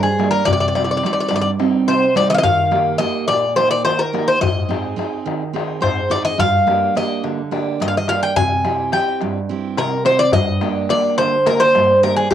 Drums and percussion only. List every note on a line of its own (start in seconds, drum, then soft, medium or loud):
0.05 darbuka tek soft
0.20 darbuka tek medium
0.47 darbuka dum medium
0.62 darbuka tek soft
0.75 darbuka tek medium
0.89 darbuka tek soft
1.03 darbuka tek medium
1.31 darbuka tek medium
1.46 darbuka tek soft
1.60 darbuka tek medium
1.74 darbuka tek soft
1.88 darbuka tek medium
2.02 darbuka tek soft
2.16 darbuka tek medium
2.44 darbuka dum medium
2.58 darbuka tek soft
2.72 darbuka tek medium
2.87 darbuka tek soft
3.01 darbuka tek medium
3.29 darbuka tek medium
3.43 darbuka tek soft
3.57 darbuka tek medium
3.72 darbuka tek soft
3.86 darbuka tek medium
4.00 darbuka tek soft
4.15 darbuka tek medium
4.43 darbuka dum loud
4.57 darbuka tek soft
4.71 darbuka tek medium
4.85 darbuka tek soft
4.99 darbuka tek medium
5.13 darbuka tek soft
5.27 darbuka tek medium
5.42 darbuka tek soft
5.56 darbuka tek medium
5.70 darbuka tek soft
5.83 darbuka tek medium
5.83 darbuka dum medium
5.98 darbuka tek soft
6.11 darbuka tek medium
6.26 darbuka tek soft
6.39 darbuka dum medium
6.53 darbuka tek soft
6.68 darbuka tek medium
6.82 darbuka tek soft
6.97 darbuka tek medium
7.24 darbuka tek medium
7.39 darbuka tek soft
7.52 darbuka tek medium
7.67 darbuka tek soft
7.81 darbuka tek medium
7.96 darbuka tek soft
8.08 darbuka tek medium
8.36 darbuka dum medium
8.50 darbuka tek soft
8.65 darbuka tek medium
8.78 darbuka tek soft
8.92 darbuka tek medium
9.21 darbuka tek medium
9.62 darbuka tek soft
9.77 darbuka tek medium
9.91 darbuka tek soft
10.05 darbuka tek medium
10.32 darbuka dum loud
10.47 darbuka tek soft
10.61 darbuka tek medium
10.76 darbuka tek soft
10.89 darbuka tek medium
11.18 darbuka tek medium
11.32 darbuka tek soft
11.46 darbuka tek medium
11.61 darbuka tek soft
11.75 darbuka tek medium
11.90 darbuka tek soft
12.04 darbuka tek medium